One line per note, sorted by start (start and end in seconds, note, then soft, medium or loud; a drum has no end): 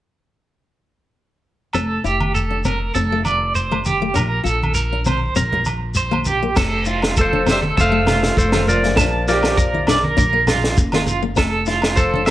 1.73 2.02 F1 medium
1.73 1.90 C4 medium
1.73 2.03 A4 medium
1.73 low agogo medium
1.73 shekere medium
2.04 2.91 F1 medium
2.04 2.20 E4 medium
2.04 2.34 G4 medium
2.04 shekere soft
2.20 high conga medium
2.20 low agogo medium
2.35 2.63 A4 medium
2.35 shekere medium
2.51 2.58 D4 medium
2.64 2.81 C4 medium
2.64 2.94 A#4 medium
2.64 high conga medium
2.64 low conga medium
2.64 low agogo medium
2.64 shekere medium
2.95 4.12 F1 medium
2.95 3.04 C4 medium
2.95 3.23 A4 medium
2.95 shekere medium
3.12 3.27 A3 medium
3.25 3.54 D5 medium
3.25 high conga medium
3.25 low agogo medium
3.25 shekere medium
3.55 3.84 C5 medium
3.55 shekere medium
3.71 3.87 A3 medium
3.71 high conga medium
3.71 low agogo medium
3.85 4.14 G4 medium
3.85 high conga medium
3.85 low conga medium
3.85 shekere medium
4.02 4.09 A3 medium
4.14 4.43 A#1 medium
4.14 4.30 D4 medium
4.14 4.44 A#4 medium
4.14 low agogo medium
4.14 shekere medium
4.44 5.32 A#1 medium
4.44 4.60 F4 medium
4.44 4.74 A4 medium
4.44 shekere medium
4.63 high conga medium
4.63 low agogo medium
4.75 5.04 A#4 medium
4.75 shekere medium
4.93 5.00 D4 medium
5.05 5.22 C4 medium
5.05 5.35 C5 medium
5.05 high conga medium
5.05 low conga medium
5.05 low agogo medium
5.05 shekere medium
5.36 6.53 A#1 medium
5.36 5.44 C4 medium
5.36 5.65 A#4 medium
5.36 shekere medium
5.53 muted steel-string acoustic guitar stroke medium
5.53 low conga medium
5.65 muted clean electric guitar stroke medium
5.65 high conga medium
5.65 low agogo medium
5.65 shekere medium
5.95 6.25 C5 medium
5.95 shekere loud
6.11 6.27 A#3 medium
6.11 high conga medium
6.11 low agogo medium
6.25 6.55 G4 medium
6.25 high conga medium
6.25 low conga medium
6.25 shekere medium
6.43 6.50 A#3 medium
6.56 7.73 F1 medium
6.56 6.73 C4 medium
6.56 6.85 A4 medium
6.56 kick medium
6.56 snare medium
6.56 crash medium
6.56 low agogo medium
6.56 shekere medium
6.85 7.02 E4 medium
6.85 7.15 F4 medium
6.85 shekere medium
7.02 snare medium
7.02 low agogo medium
7.16 7.46 A4 medium
7.16 kick medium
7.16 shekere medium
7.21 7.47 F3 medium
7.21 7.47 C5 medium
7.33 7.40 D4 medium
7.33 high conga medium
7.46 7.62 C4 medium
7.46 7.62 C5 medium
7.46 snare medium
7.46 low conga medium
7.46 low agogo medium
7.46 shekere medium
7.51 7.64 G3 medium
7.51 7.59 C5 medium
7.51 7.59 E5 medium
7.62 7.76 A4 medium
7.62 high conga medium
7.77 8.33 F1 medium
7.77 8.35 A3 medium
7.77 7.85 C4 medium
7.77 8.06 A4 medium
7.77 8.35 C5 medium
7.77 8.35 F5 loud
7.77 kick medium
7.77 shekere loud
7.92 8.08 A3 medium
8.06 8.35 F4 medium
8.06 snare medium
8.06 low conga medium
8.06 low agogo medium
8.23 snare medium
8.37 8.97 F1 medium
8.37 8.67 F3 medium
8.37 8.65 A4 medium
8.37 8.66 C5 medium
8.37 kick medium
8.37 shekere loud
8.52 8.69 A3 medium
8.52 8.82 F4 medium
8.52 snare medium
8.52 high conga medium
8.52 low agogo medium
8.67 9.24 F3 medium
8.67 9.24 A#4 medium
8.67 9.27 D5 medium
8.67 low conga medium
8.67 shekere medium
8.83 8.92 A3 medium
8.83 snare soft
8.96 10.13 A#1 medium
8.96 9.14 D4 medium
8.96 9.26 A5 medium
8.96 kick medium
8.96 snare medium
8.96 low agogo medium
8.96 shekere loud
9.27 10.14 F3 medium
9.27 9.43 F4 medium
9.27 9.56 G4 medium
9.27 10.14 A#4 medium
9.27 10.14 D5 medium
9.27 snare soft
9.27 shekere medium
9.43 snare medium
9.43 low agogo medium
9.57 9.86 A#4 medium
9.57 kick medium
9.57 shekere medium
9.74 9.81 E4 medium
9.74 high conga medium
9.87 10.04 D4 medium
9.87 10.03 D5 medium
9.87 snare medium
9.87 low conga medium
9.87 low agogo medium
9.87 shekere medium
10.03 10.17 A#4 medium
10.03 high conga medium
10.17 10.74 A#1 medium
10.17 10.25 D4 medium
10.17 10.46 A#4 medium
10.17 kick medium
10.17 shekere medium
10.33 10.48 A#3 medium
10.47 10.76 F4 medium
10.47 snare medium
10.47 low conga medium
10.47 low agogo medium
10.47 shekere medium
10.64 snare medium
10.77 11.38 F#1 medium
10.77 kick medium
10.77 shekere medium
10.92 11.09 A#3 medium
10.92 11.23 F4 medium
10.92 snare medium
10.92 high conga medium
10.92 low agogo medium
11.07 low conga medium
11.07 shekere medium
11.23 11.30 A#3 medium
11.36 12.30 F1 medium
11.36 11.52 C4 medium
11.36 11.66 A4 medium
11.36 kick medium
11.36 snare medium
11.36 low agogo medium
11.36 shekere medium
11.66 11.83 E4 medium
11.66 11.96 F4 medium
11.66 snare soft
11.66 shekere medium
11.82 snare medium
11.82 low agogo medium
11.96 12.26 F3 medium
11.96 12.25 A4 medium
11.96 12.26 A4 medium
11.96 12.27 C5 medium
11.96 kick medium
11.96 shekere medium
12.14 12.22 D4 medium
12.14 high conga medium
12.26 12.30 E5 medium
12.26 snare medium
12.26 shekere medium